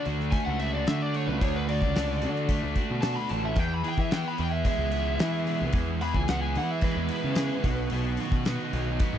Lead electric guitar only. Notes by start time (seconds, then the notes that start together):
0.31 G#5
0.45 F#5
0.59 E5
0.74 D5
0.87 E5
1.02 D5
1.16 C#5
1.28 B4
1.41 C#5
1.56 B4
1.69 D5
3.02 A5
3.16 B5
3.31 A5
3.45 E5
3.59 G5
3.74 B5
3.88 G5
4.00 E5
4.13 G5
4.28 B5
4.41 G5
4.52 E5
4.66 E5
6.02 B5
6.15 G#5
6.30 F#5
6.42 G#5
6.57 F#5
6.71 E5
6.83 B4